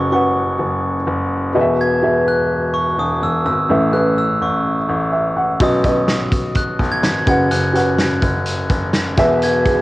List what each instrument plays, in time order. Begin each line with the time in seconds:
Already playing: grand piano F#1, upright piano C#3 C#4 F#4 B4 F#5, glockenspiel C#6
0.11 upright piano C#4 F#4 B4 F#5, glockenspiel C#6
0.59 grand piano F#1
1.07 grand piano F#1
1.53 grand piano E1, upright piano B2 B3 F#4 G#4 D#5
1.61 upright piano E5
1.81 glockenspiel G#6
2.02 upright piano B3 F#4 G#4 E5
2.28 glockenspiel F#6
2.74 glockenspiel C#6
2.98 grand piano E1, glockenspiel D#6
3.22 grand piano E1, glockenspiel E6
3.46 grand piano G#1, glockenspiel E6
3.69 grand piano A1, upright piano A2 E3 C#4 E4 A4 E5
3.92 upright piano C#4 E4 A4 B4, glockenspiel F#6
4.18 glockenspiel E6
4.41 grand piano A1, glockenspiel C#6
4.89 grand piano A1
5.13 upright piano E5
5.36 upright piano F#5
5.60 grand piano B1, upright piano B2 F#3 C#4 F#4 B4 D#5, glockenspiel D#6, kick, closed hi-hat
5.83 upright piano C#4 F#4 B4 D#5, kick, closed hi-hat
6.08 snare, closed hi-hat
6.32 kick, closed hi-hat
6.54 glockenspiel F#6, kick, closed hi-hat
6.79 grand piano B1, kick, closed hi-hat
6.92 glockenspiel G#6
7.03 grand piano G#1, snare, closed hi-hat
7.26 grand piano F#1, upright piano C#3 C#4 F#4 B4 F#5, glockenspiel G#6, kick, closed hi-hat
7.51 grand piano F#1, glockenspiel F#6, closed hi-hat
7.73 upright piano C#4 F#4 B4 F#5, glockenspiel F#6, closed hi-hat
7.98 snare, closed hi-hat
8.22 grand piano F#1, kick, closed hi-hat
8.46 closed hi-hat
8.70 grand piano F#1, kick, closed hi-hat
8.93 snare, closed hi-hat
9.17 grand piano E1, upright piano B2 B3 F#4 G#4 E5, kick, snare, closed hi-hat
9.42 glockenspiel G#6, closed hi-hat
9.65 upright piano B3 F#4 G#4 B4, kick, closed hi-hat